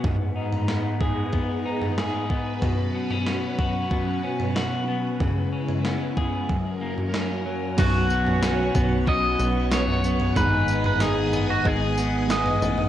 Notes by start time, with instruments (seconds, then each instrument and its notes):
Already playing: clean electric guitar B3 C#4 F#4
0.03 clean electric guitar G#2, string machine G#2 G#3 D#4 B4, kick, floor tom
0.36 clean electric guitar D#4
0.52 floor tom
0.68 clean electric guitar B3, snare
1.01 clean electric guitar G#4, kick, floor tom
1.33 clean electric guitar B3, kick, floor tom
1.65 clean electric guitar D#4
1.81 floor tom
1.98 clean electric guitar G#4, snare
2.30 clean electric guitar B3, kick
2.62 string machine B2 F#3 C#4, clean electric guitar B2, kick, floor tom
2.95 clean electric guitar B3
3.10 clean electric guitar C#4, floor tom
3.27 clean electric guitar B3, snare
3.59 clean electric guitar F#4, kick, floor tom
3.91 clean electric guitar B3, kick, floor tom
4.23 clean electric guitar C#4
4.40 floor tom
4.56 clean electric guitar F#4, snare
4.88 clean electric guitar B3
5.20 clean electric guitar C#3, string machine C#3 G#3 E4, kick, floor tom
5.52 clean electric guitar C#4
5.69 floor tom
5.85 clean electric guitar B3, snare
6.17 clean electric guitar G#4, kick, floor tom
6.49 clean electric guitar F#2, string machine F#2 F#3 C#4 A#4, kick, floor tom
6.81 clean electric guitar A#3
6.98 floor tom
7.14 clean electric guitar C#4, snare
7.46 clean electric guitar F#3
7.77 analog synth bass B1, clean electric guitar B2 F#3 B3 C#4 F#4, string machine B4 C#5 F#5 C#6, kick, floor tom, crash, tambourine
7.82 clean electric guitar F#4
8.10 clean electric guitar B3, tambourine
8.27 floor tom
8.43 clean electric guitar C#4, snare, tambourine
8.75 analog synth bass B1, clean electric guitar B3, kick, floor tom, tambourine
9.07 clean electric guitar F#3 B3 C#4 F#4 D#5, kick
9.39 analog synth bass B1, clean electric guitar B3, tambourine
9.71 clean electric guitar F#3 B3 C#4 F#4 C#5, snare, tambourine
9.88 floor tom
10.04 clean electric guitar B3, tambourine
10.20 floor tom
10.35 analog synth bass G#1, clean electric guitar G#2 D#3 G#3 B3 D#4 B4, string machine D#5 G#5 D#6, kick, floor tom, tambourine
10.39 clean electric guitar D#4 G#4
10.68 clean electric guitar B3, tambourine
10.84 clean electric guitar B4, floor tom
11.00 clean electric guitar D#4 G#4, snare, tambourine
11.33 clean electric guitar B3, floor tom, tambourine
11.50 clean electric guitar F#4
11.64 analog synth bass G#1, clean electric guitar G#3 B3 D#4 G#4, kick
11.97 clean electric guitar B3, tambourine
12.27 clean electric guitar G#3 B3 D#4 G#4 D#5, snare, tambourine
12.46 floor tom
12.62 analog synth bass A1, clean electric guitar B3, tambourine
12.78 floor tom